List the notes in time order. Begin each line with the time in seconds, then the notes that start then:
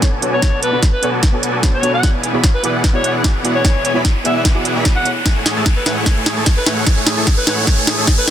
Already playing: B3 F#4 A4 D5 G#5, riser
0.01 B3 D4 F#4 A4 C#5, kick, snare, closed hi-hat
0.21 B3 D4 F#4 A4 C#5, closed hi-hat
0.33 C#5
0.41 B3 D4 F#4 A4 C#5, kick, snare, closed hi-hat
0.62 B4, closed hi-hat
0.72 B3 D4 F#4 A4 B4 D5 B5
0.83 kick, snare, closed hi-hat
0.93 B4
1.02 B3 D4 F#4 A4 C#5 D5 G#5, closed hi-hat
1.23 kick, snare, closed hi-hat
1.32 B3 D4 F#4 A4 C#5
1.43 closed hi-hat
1.62 B3 D4 F#4 A4 C#5, kick, snare, closed hi-hat
1.74 C#5
1.82 B3 D4 F#4 A4 C#5, closed hi-hat
1.94 F#5
2.02 B3 E4 F#4 G#4 D5, kick, snare, closed hi-hat
2.23 closed hi-hat
2.33 B3 E4 F#4 G#4 C#5 D5 B5
2.44 kick, snare, closed hi-hat
2.54 B4
2.63 B3 E4 F#4 G#4 B4 D5 F#5, closed hi-hat
2.84 kick, snare, closed hi-hat
2.93 B3 E4 F#4 G#4 C#5 D5
3.04 closed hi-hat
3.23 B3 E4 F#4 G#4 D5, kick, snare, closed hi-hat
3.43 B3 E4 F#4 G#4 D5, closed hi-hat
3.55 C#5
3.63 B3 E4 F#4 G#4 D5, kick, snare, closed hi-hat
3.85 C#5, closed hi-hat
3.94 B3 E4 F#4 G#4 C#5 D5 B5
4.05 kick, snare, closed hi-hat
4.24 B3 E4 F#4 G#4 D5 E5 F#5, closed hi-hat
4.36 E5
4.45 kick, snare, closed hi-hat
4.54 B3 E4 F#4 G#4 D5
4.65 closed hi-hat
4.75 B3 E4 G#4 D5 B5
4.84 B3 E4 F#4 G#4 D5, kick, snare, closed hi-hat
4.96 F#5
5.04 B3 E4 G#4 A4 C#5, closed hi-hat
5.26 A3 E4 G#4 C#5 G#5, kick, snare, closed hi-hat
5.36 A4
5.46 G#4, snare, closed hi-hat
5.56 A3 E4 G#4 A4 C#5 A5
5.66 C#5, kick, snare, closed hi-hat
5.76 A4 B4
5.86 A3 E4 G#4 B4 C#5 F#5, snare, closed hi-hat
5.97 A4
6.06 A3 E4 G#4 C#5 G#5, kick, snare, closed hi-hat
6.17 A4
6.26 G#4, snare, closed hi-hat
6.37 A3 E4 G#4 A4 C#5 A5
6.46 C#5, kick, snare, closed hi-hat
6.57 A4 B4
6.66 A3 E4 G#4 B4 C#5 F#5, snare, closed hi-hat
6.77 A4
6.87 A3 E4 G#4 C#5 G#5, kick, snare, closed hi-hat
6.97 A4
7.07 G#4, snare, closed hi-hat
7.17 A3 E4 G#4 A4 C#5 A5
7.27 C#5, kick, snare, closed hi-hat
7.37 A4 B4
7.47 A3 E4 G#4 B4 C#5 F#5, snare, closed hi-hat
7.58 A4
7.67 C#5, kick, snare, closed hi-hat
7.78 A4
7.87 G#4, snare, closed hi-hat
7.98 A3 E4 G#4 A4 C#5 A5
8.07 C#5, kick, snare, closed hi-hat
8.18 A4 B4